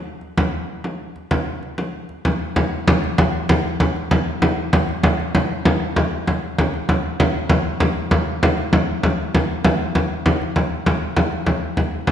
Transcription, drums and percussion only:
0.21 frame drum
0.38 frame drum
0.84 frame drum
1.16 frame drum
1.31 frame drum
1.63 frame drum
1.78 frame drum
2.09 frame drum
2.25 frame drum
2.56 frame drum
2.88 frame drum
3.04 frame drum
3.18 frame drum
3.49 frame drum
3.80 frame drum
3.96 frame drum
4.11 frame drum
4.42 frame drum
4.73 frame drum
4.89 frame drum
5.03 frame drum
5.20 frame drum
5.35 frame drum
5.65 frame drum
5.96 frame drum
6.27 frame drum
6.58 frame drum
6.74 frame drum
6.89 frame drum
7.20 frame drum
7.49 frame drum
7.80 frame drum
8.11 frame drum
8.43 frame drum
8.58 frame drum
8.73 frame drum
9.03 frame drum
9.35 frame drum
9.64 frame drum
9.95 frame drum
10.26 frame drum
10.42 frame drum
10.56 frame drum
10.86 frame drum
11.16 frame drum
11.32 frame drum
11.46 frame drum
11.77 frame drum
12.07 frame drum

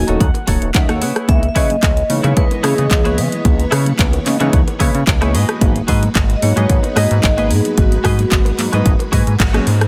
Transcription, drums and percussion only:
0.07 closed hi-hat, high bongo, low conga
0.20 kick, closed hi-hat
0.34 closed hi-hat, high bongo
0.47 kick, open hi-hat, high conga
0.62 closed hi-hat
0.75 kick, clap, closed hi-hat
0.89 cross-stick, closed hi-hat, high conga
1.02 open hi-hat
1.16 cross-stick, closed hi-hat
1.28 kick, closed hi-hat, high conga
1.43 closed hi-hat
1.56 kick, open hi-hat
1.70 closed hi-hat, high conga, low conga
1.83 kick, clap, closed hi-hat
1.97 closed hi-hat
2.10 open hi-hat, high conga
2.24 closed hi-hat, high bongo, low conga
2.37 kick, closed hi-hat
2.51 closed hi-hat, high bongo
2.64 cross-stick, open hi-hat, high conga
2.78 closed hi-hat
2.91 kick, clap, closed hi-hat
3.05 closed hi-hat, high conga
3.18 open hi-hat
3.31 closed hi-hat, low conga
3.45 kick, closed hi-hat, high conga
3.60 closed hi-hat
3.72 cross-stick, open hi-hat
3.86 closed hi-hat, high conga, low conga
3.99 kick, clap, closed hi-hat
4.13 closed hi-hat, high bongo
4.26 clap, open hi-hat, high conga
4.40 closed hi-hat, high bongo, low conga
4.53 kick, closed hi-hat
4.67 closed hi-hat, high bongo
4.80 kick, open hi-hat, high conga
4.95 closed hi-hat
5.07 kick, clap, closed hi-hat
5.21 cross-stick, closed hi-hat, high conga
5.35 open hi-hat
5.49 cross-stick, closed hi-hat
5.61 kick, closed hi-hat, high conga
5.76 closed hi-hat
5.88 kick, open hi-hat
6.02 closed hi-hat, high conga, low conga
6.15 kick, clap, closed hi-hat
6.30 closed hi-hat
6.42 open hi-hat, high conga
6.57 closed hi-hat, high bongo, low conga
6.69 kick, closed hi-hat
6.83 closed hi-hat, high bongo
6.95 cross-stick, open hi-hat, high conga
7.11 closed hi-hat
7.23 kick, clap, closed hi-hat
7.38 closed hi-hat, high conga
7.51 open hi-hat
7.65 closed hi-hat, low conga
7.78 kick, closed hi-hat, high conga
7.92 closed hi-hat
8.05 kick, cross-stick, open hi-hat
8.18 closed hi-hat, high conga, low conga
8.32 kick, clap, closed hi-hat
8.45 closed hi-hat, high bongo
8.59 clap, open hi-hat, high conga
8.73 closed hi-hat, high bongo, low conga
8.86 kick, closed hi-hat
8.99 closed hi-hat, high bongo
9.13 kick, open hi-hat, high conga
9.27 closed hi-hat
9.40 kick, clap, closed hi-hat
9.54 cross-stick, closed hi-hat, high conga
9.67 open hi-hat
9.81 cross-stick, closed hi-hat

